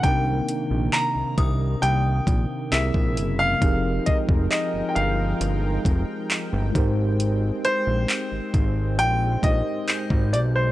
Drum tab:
HH |x-x-x-x-x-x-x-x-|x-x-x-x-x-x-x-x-|x-x-x-x-x-x-x-x-|
CP |----x-------x---|----x-------x---|----x-------x---|
BD |o-----o---o--o--|o-oo------o---o-|------o---o--o--|